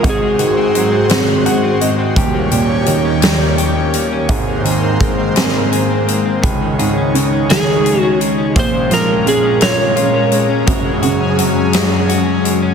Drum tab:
HH |xxxxxx|xxxxxx|xxxxxx|xxxxxx|
SD |---o--|---o--|---o--|---o--|
BD |o-----|o-----|o-o---|o-----|

HH |xxxxxx|xxxxxx|
SD |-o-o--|---o--|
BD |o-----|o-----|